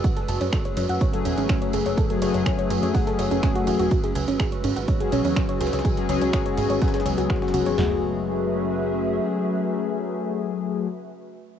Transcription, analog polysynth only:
\new Staff \with { instrumentName = "Analog polysynth" } { \time 4/4 \key fis \minor \tempo 4 = 124 r2 r16 <fis a gis'>4.~ <fis a gis'>16~ | <fis a gis'>16 <fis a gis'>16 <fis a gis'>2.~ <fis a gis'>8 | r2 r16 <fis cis' gis'>4.~ <fis cis' gis'>16~ | <fis cis' gis'>16 <fis cis' gis'>16 <fis cis' gis'>2.~ <fis cis' gis'>8 |
<fis a gis'>1~ | <fis a gis'>1 | }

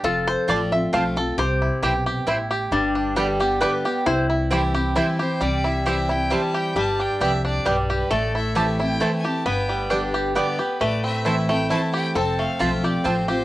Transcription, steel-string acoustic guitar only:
\new Staff \with { instrumentName = "Steel-string acoustic guitar" } { \time 3/4 \key c \major \tempo 4 = 134 << { r4 <f a c' f'>8 <c' f'>8 <f a c' f'>8 <c' f'>8 | r2. | r4 <d g b g'>8 <b g'>8 <d g b g'>8 <b g'>8 | r4 <e g c' e'>8 <c' e'>8 <e g c' e'>8 <c' e'>8 |
r4 <e g c' e'>8 <c' e'>8 <e g c' e'>4 | r2. | r4 <e a c' e'>8 <c' e'>8 <e a c' e'>8 <c' e'>8 | r4 <d g b g'>4 <d g b g'>8 <b g'>8 |
r4 <e a c' e'>8 <c' e'>8 <e a c' e'>4 | r4 <f a c' f'>8 <c' f'>8 <f a c' f'>8 <c' f'>8 | } \\ { f,2 r4 | c4 b,4 a,4 | g,2 r4 | c2 r4 |
c2 r4 | g,4 f,4 g,4 | a,2 r4 | g,2 r4 |
a,2 r4 | f,2 r4 | } >> }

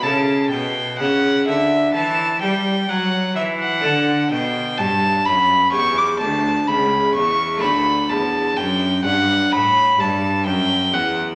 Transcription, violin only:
\new Staff \with { instrumentName = "Violin" } { \time 4/4 \key d \major \tempo 4 = 63 a''8 g''8 fis''8 e''8 a''8 g''8 fis''8 e''16 fis''16~ | fis''8 g''8 a''8 b''8 cis'''16 d'''16 a''8 b''8 cis'''8 | b''8 a''8 g''8 fis''8 b''8 a''8 g''8 fis''16 r16 | }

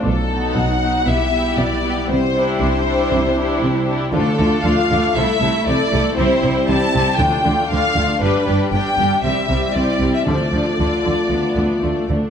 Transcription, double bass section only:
\new Staff \with { instrumentName = "Double bass section" } { \clef bass \time 4/4 \key d \dorian \tempo 4 = 118 b,,4 b,,4 b,,4 b,,4 | c,4 c,4 c,4 c,4 | d,8 d,8 d,8 d,8 c,8 c,8 c,8 c,8 | c,8 c,8 c,8 c,8 d,8 d,8 d,8 d,8 |
g,,8 g,,8 g,,8 g,,8 c,8 c,8 c,8 c,8 | d,8 d,8 d,8 d,8 d,8 d,8 d,8 d,8 | }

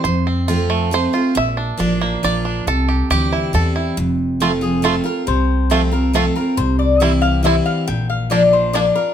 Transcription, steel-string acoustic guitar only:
\new Staff \with { instrumentName = "Steel-string acoustic guitar" } { \time 3/4 \key f \major \tempo 4 = 138 << { r4 <f a c' f'>4 <f a c' f'>8 <c' f'>8 | r4 <f bes d' f'>4 <f bes d' f'>4 | r4 <e g c' e'>4 <e g c' e'>4 | r4 <f a c' f'>8 <c' f'>8 <f a c' f'>8 <c' f'>8 |
r4 <f a c' f'>8 <c' f'>8 <f a c' f'>8 <c' f'>8 | r4 <e g c' e'>4 <e g c' e'>4 | r4 <f bes d' f'>4 <f bes d' f'>8 <d' f'>8 | } \\ { f,2 r4 | bes,2 r4 | c2 r4 | f,2 r4 |
c2 r4 | c2 r4 | bes,2 r4 | } >> }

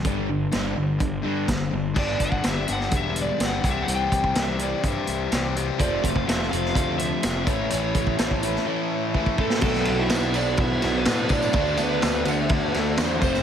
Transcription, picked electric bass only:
\new Staff \with { instrumentName = "Picked electric bass" } { \clef bass \time 4/4 \key g \major \tempo 4 = 125 g,,4 g,,8 g,,8 g,,8 g,8 g,,8 g,,8 | g,,8 g,,8 g,,8 g,,8 e,,4 g,,8 c,8 | c,8 c,8 c,4 g,8 c,8 c,4 | f,,8 f,,8 f,,8 f,,8 d,4 f,,8 a,,8 |
a,,8 a,,8 a,,4 r2 | b,,8 b,,8 b,,4 b,,8 b,,8 a,4 | d,8 d,8 d,8 d,8 d,8 d,8 e,8 f,,8 | }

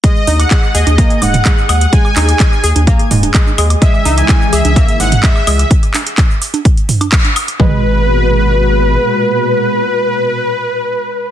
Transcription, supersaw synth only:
\new Staff \with { instrumentName = "Supersaw synth" } { \time 4/4 \key gis \minor \tempo 4 = 127 dis''8. fis''8. dis''4 fis''4 fis''8 | gis''8 gis''4 r2 r8 | e''8. gis''8. e''4 fis''8 e''4 | r1 |
b'1~ | b'1 | }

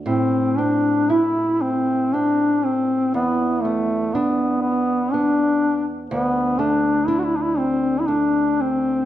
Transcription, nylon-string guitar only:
\new Staff \with { instrumentName = "Nylon-string guitar" } { \time 3/4 \key a \minor \tempo 4 = 60 a,8 c'8 e'4 c'4 | e,8 b8 d'4 b4 | d,8 a8 d'4 a4 | }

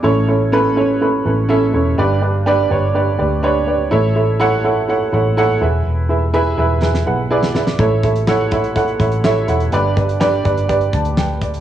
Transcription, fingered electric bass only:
\new Staff \with { instrumentName = "Fingered electric bass" } { \clef bass \time 4/4 \key a \major \tempo 4 = 124 a,,2~ a,,8 a,,4 e,,8 | g,,4. g,,4 d,4. | a,,2~ a,,8 a,,4 e,,8 | e,,4. e,,4 b,,4. |
a,,2~ a,,8 a,,4 e,,8 | g,,4. g,,4 d,4. | }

